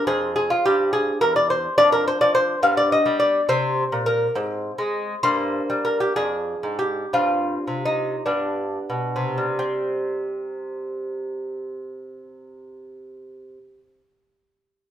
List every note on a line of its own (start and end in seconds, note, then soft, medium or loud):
0.07 0.53 F2 medium
0.07 1.74 C4 medium
0.07 0.34 G#4 loud
0.36 0.50 G#4 medium
0.50 0.64 F4 medium
0.66 1.11 G2 medium
0.66 0.92 G4 loud
0.93 1.20 G#4 loud
1.21 1.67 E2 medium
1.21 1.35 A#4 loud
1.36 1.50 D5 medium
1.50 1.77 C5 loud
1.78 2.12 F2 medium
1.78 2.59 D4 medium
1.78 1.92 D5 loud
1.92 2.06 A#4 loud
2.08 2.21 C5 loud
2.21 2.55 F3 medium
2.21 2.34 D5 loud
2.35 2.62 C5 loud
2.63 2.97 G2 medium
2.63 3.45 B3 medium
2.63 2.77 F5 loud
2.77 2.91 D5 loud
2.92 3.19 D#5 loud
3.06 3.40 G3 medium
3.20 3.47 D5 loud
3.49 3.83 C3 medium
3.49 4.31 C4 medium
3.49 4.04 C5 loud
3.92 4.27 A#2 medium
4.06 4.34 A#4 medium
4.35 4.70 G#2 medium
4.35 5.20 C4 medium
4.78 5.14 G#3 medium
5.23 5.60 G2 medium
5.23 6.12 A#3 medium
5.23 5.82 C5 loud
5.70 6.07 G3 medium
5.85 6.00 A#4 medium
6.00 6.16 G4 medium
6.16 6.55 F2 medium
6.16 7.11 D4 soft
6.16 6.78 G#4 loud
6.63 7.04 G#2 medium
6.79 7.12 G4 medium
7.13 7.57 G2 medium
7.13 8.22 C4 soft
7.13 7.84 F4 medium
7.67 8.15 C3 medium
7.86 8.24 D#4 medium
8.26 8.77 G2 medium
8.26 9.55 B3 soft
8.26 9.55 D4 medium
8.90 9.45 B2 medium
9.16 13.58 C3 medium
9.38 13.79 G3 medium
9.59 14.01 C4 medium